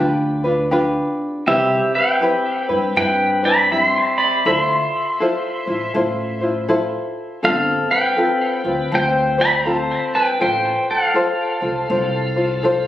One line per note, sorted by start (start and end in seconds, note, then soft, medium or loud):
0.00 0.95 D2 medium
0.00 0.44 D4 medium
0.00 0.44 F4 medium
0.00 0.45 G4 medium
0.00 0.43 B4 medium
0.44 0.71 D4 soft
0.44 0.71 F4 soft
0.44 0.71 B4 medium
0.71 1.47 D4 medium
0.71 1.47 F4 medium
0.71 1.46 G4 medium
0.71 1.47 B4 medium
1.47 1.78 C2 medium
1.47 2.22 C4 medium
1.47 2.22 E4 medium
1.47 2.20 G4 medium
1.47 1.92 G4 medium
1.47 2.21 B4 medium
1.47 1.95 E5 medium
1.95 2.93 B4 medium
1.95 2.96 G5 medium
2.21 2.69 C4 medium
2.21 2.69 E4 medium
2.21 2.68 G4 medium
2.21 2.68 B4 medium
2.69 2.87 G2 medium
2.69 2.96 C4 soft
2.69 2.97 E4 soft
2.69 2.96 B4 medium
2.96 3.93 G2 medium
2.96 3.44 C4 medium
2.96 3.43 E4 medium
2.96 3.43 G4 soft
2.96 3.41 B4 medium
2.96 3.42 B4 medium
2.96 3.45 G5 medium
3.43 3.70 C4 soft
3.43 3.71 E4 soft
3.43 3.71 B4 medium
3.43 3.70 D5 medium
3.43 3.72 B5 medium
3.71 4.46 C4 medium
3.71 4.46 E4 medium
3.71 4.45 G4 medium
3.71 4.15 E5 medium
3.71 3.84 B5 medium
3.84 4.17 C6 medium
4.18 4.44 D5 medium
4.18 4.46 B5 medium
4.45 4.76 D2 medium
4.45 5.19 E4 medium
4.45 5.21 F4 medium
4.45 5.20 A4 medium
4.45 5.21 C5 medium
4.45 5.91 E5 medium
4.45 5.91 C6 loud
5.20 5.67 E4 medium
5.20 5.66 F4 medium
5.20 5.67 A4 medium
5.20 5.65 C5 medium
5.66 5.85 A1 medium
5.66 5.93 E4 soft
5.66 5.94 F4 medium
5.66 5.94 C5 medium
5.94 6.91 A1 medium
5.94 6.41 E4 medium
5.94 6.41 F4 medium
5.94 6.41 A4 medium
5.94 6.40 C5 medium
6.41 6.68 E4 soft
6.41 6.68 F4 medium
6.41 6.68 C5 medium
6.68 7.43 E4 loud
6.68 7.43 F4 medium
6.68 7.42 A4 medium
6.68 8.91 C5 medium
7.43 7.74 G1 medium
7.43 8.17 C4 medium
7.43 8.17 F4 medium
7.43 8.16 A4 medium
7.43 7.89 A4 medium
7.43 7.88 F5 medium
7.91 8.90 B4 medium
7.91 8.94 G5 medium
8.17 8.64 C4 medium
8.17 8.63 F4 medium
8.17 8.64 A4 medium
8.65 8.83 D2 medium
8.65 8.92 C4 soft
8.65 8.92 F4 soft
8.92 9.89 D2 medium
8.92 9.39 C4 medium
8.92 9.38 F4 medium
8.92 9.39 A4 medium
8.92 9.37 C5 medium
8.92 9.38 C5 medium
8.92 9.42 G5 medium
9.38 9.64 C4 soft
9.38 9.65 F4 soft
9.38 9.65 C5 medium
9.38 9.54 D5 medium
9.38 9.55 B5 medium
9.55 10.11 C5 medium
9.55 9.72 A#5 medium
9.65 10.40 C4 medium
9.65 10.39 F4 medium
9.65 10.40 A4 medium
9.72 10.17 A5 medium
10.15 10.41 B4 medium
10.15 10.41 G5 medium
10.40 10.72 A1 medium
10.40 11.14 F4 medium
10.40 11.13 A4 medium
10.40 11.15 C5 medium
10.40 10.86 C5 medium
10.40 10.90 G5 medium
10.91 12.87 A4 medium
10.91 12.87 F5 medium
11.14 11.61 F4 medium
11.14 11.62 A4 medium
11.14 11.60 C5 medium
11.61 11.80 C2 medium
11.61 11.89 F4 medium
11.61 11.89 C5 medium
11.88 12.87 C2 medium
11.88 12.36 F4 medium
11.88 12.36 A4 medium
11.88 12.35 C5 medium
12.36 12.63 F4 medium
12.36 12.63 C5 medium
12.63 12.87 F4 medium
12.63 12.87 A4 medium
12.63 12.87 C5 medium